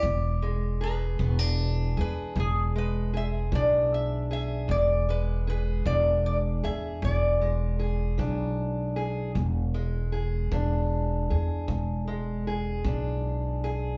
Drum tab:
BD |o--o--o--o--|o--o--o--o--|o--o--o--o--|